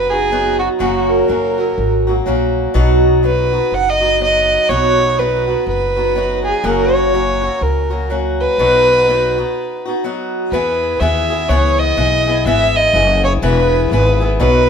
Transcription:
Already playing: F#1 B3 D#4 F#4 B4
0.10 D#4 F#4 G#4
0.14 B3
0.31 F#3 B3 D#4 F#4
0.59 F#4
0.79 F#1 F#2 C#3 F#3 A#3 C#4 F#4
1.09 A#4
1.28 F#1 F#3 A#3 C#4 F#4
1.58 F#3 A#3 C#4 F#4
1.78 G#1
2.07 F#3 A#3 C#4 F#4
2.26 A#1 F#3 A#3 C#4 F#4
2.74 B1 B2 F#3 B3 D#4 F#4
3.23 F#3 B3 D#4 F#4 B4
3.52 B3 D#4 F#4
3.72 F#1 F#5
3.89 D#5
4.01 B3 D#4 F#4
4.20 F#3 B3 D#4 F#4 D#5
4.69 B1 B2 F#3 B3 D#4 F#4 C#5
5.19 F#3 B3 D#4 F#4 B4
5.48 B3 D#4 F#4
5.67 F#1 B4
5.96 B3 D#4 F#4
6.15 F#3 B3 D#4 F#4
6.45 G#4
6.64 F#1 F#2 C#3 F#3 A#3 C#4 F#4 A#4
6.94 C#5
7.13 F#3 A#3 C#4 F#4
7.42 F#3 A#3 C#4 F#4
7.61 C#2 A#4
7.90 F#3 A#3 C#4 F#4
8.10 F#3 A#3 C#4 F#4
8.40 B4
8.58 B1 B2 F#3 B3 D#4 F#4
9.08 F#3 B3 D#4 F#4
9.38 B3 D#4 F#4
9.85 B3 D#4 F#4
10.04 F#3 B3 D#4 F#4
10.51 E2 E3 B3 E4 G#4 B4
11.00 D#2 E3 B3 E4 G#4 E5
11.30 B3 E4 G#4
11.49 C#2 E3 B3 E4 G#4 C#5
11.78 D#5
11.97 B1 E3 B3 E4 G#4
12.28 B3 E4 G#4
12.46 G#1 E3 B3 E4 G#4 E5
12.76 D#5
12.94 F#1 E3 B3 E4 G#4
13.24 B3 E4 G#4 C#5
13.42 E1 E3 B3 E4 G#4 B4
13.91 G#1 E3 B3 E4 G#4 B4
14.20 B3 E4 G#4
14.40 B1 B2 F#3 B3 D#4 F#4 B4

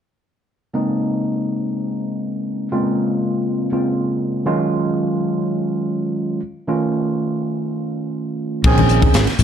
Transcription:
0.74 C#3 G#3 A#3 C4 D#4
2.72 C#3 G#3 A#3 C4 F4
3.72 C#3 G#3 A#3 C4 F4
4.45 D#3 F#3 G#3 C#4 F4
6.68 D#3 A3 C#4 F4
8.64 A#1 D#3 C4 C#4 G#4, kick, crash
8.78 ride, high conga
8.89 hi-hat pedal
9.02 kick, ride, low conga
9.14 G#1, snare, hi-hat pedal, ride
9.27 snare, ride
9.39 A#1, hi-hat pedal, low conga

